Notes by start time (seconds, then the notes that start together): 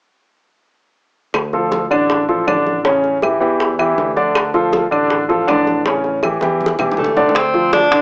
1.34 D2, high bongo, high conga, claves
1.53 F3 F4 A4, high bongo, high conga
1.72 high bongo, high conga
1.91 A1 D3 D4 D5, high conga, claves
2.10 high bongo, high conga
2.29 F3 F4 A4, high bongo, high conga
2.47 A1 D3 D4 D5, high bongo, low bongo, high conga, claves
2.67 high bongo, high conga
2.84 C#3 C#4 C#5, high bongo, high conga
3.04 high bongo, high conga
3.22 E3 E4 G4, high bongo, high conga, claves
3.40 E2 E3 E4 G4, high conga
3.60 high bongo
3.79 E3 E4 G4, high bongo, high conga, claves
3.98 D2, high bongo, low bongo, high conga
4.16 D3 D4 D5, high bongo, high conga
4.35 high bongo, claves
4.54 F3 F4 A4, high bongo, high conga
4.73 high bongo, high conga
4.91 A1 D3 D4 D5, high conga, claves
5.10 high bongo, high conga
5.28 F3 F4 A4, high bongo, high conga
5.47 A1 D3 D4 D5, high bongo, low bongo, high conga, claves
5.67 high bongo, high conga
5.85 C#3 C#4 C#5, high bongo, high conga
6.04 high bongo, high conga
6.23 E3 E4 G4, high bongo, high conga, claves
6.41 E2 E3 E4 G4, high bongo, high conga
6.61 high conga
6.66 high bongo
6.79 E2 E3 E4 G4, low bongo, low conga, claves
6.92 low bongo
6.97 D2 A3, low conga
7.04 low bongo
7.17 D3 D4 D5, low bongo, low conga
7.29 low bongo
7.35 C4, high bongo, high conga, high timbale
7.54 F3 F4, high bongo, high conga
7.73 D4, high bongo, high conga, high timbale, low timbale
7.91 A1 D3 D4, high timbale